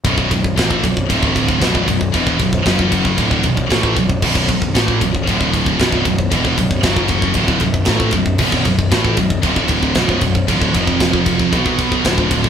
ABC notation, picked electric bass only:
X:1
M:4/4
L:1/8
Q:1/4=115
K:Bm
V:1 name="Picked electric bass" clef=bass
B,,,, B,,,, A,,, B,,,, D,,,2 B,,,, B,,,, | E,,, B,,,, F,,,2 D,,, B,,,, A,,, B,,,, | B,,,, B,,,, A,,, B,,,, D,,,2 B,,,, B,,,, | E,,, B,,,, F,,,2 D,,, B,,,, A,,, B,,,, |
B,,,, B,,,, A,,, B,,,, D,,,2 B,,,, B,,,, | D,,, =F,,,3 B,,,2 D,,,2 |]